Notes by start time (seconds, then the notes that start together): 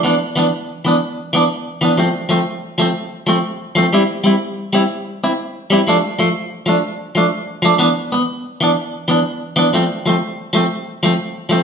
0.03 E3 B3 D4
0.36 E3 B3 D4
0.85 E3 B3 D4
1.33 E3 B3 D4
1.81 E3 B3 D4
1.98 F3 A3 C4
2.29 F3 A3 C4
2.78 F3 A3 C4
3.27 F3 A3 C4
3.75 F3 A3 C4
3.93 G3 C4 E4
4.24 G3 C4 E4
4.73 G3 C4 E4
5.24 C4 E4
5.70 G3 C4 E4
5.87 F3 A3 D4
6.19 F3 A3
6.66 F3 A3 D4
7.15 F3 A3 D4
7.62 F3 A3 D4
7.78 E3 B3 D4
8.12 B3, muted clean electric guitar stroke
8.61 E3 B3 D4
9.08 E3 B3 D4
9.56 E3 B3 D4
9.73 F3 A3 C4
10.06 F3 A3 C4
10.53 F3 A3 C4
11.03 F3 A3 C4
11.49 F3 A3 C4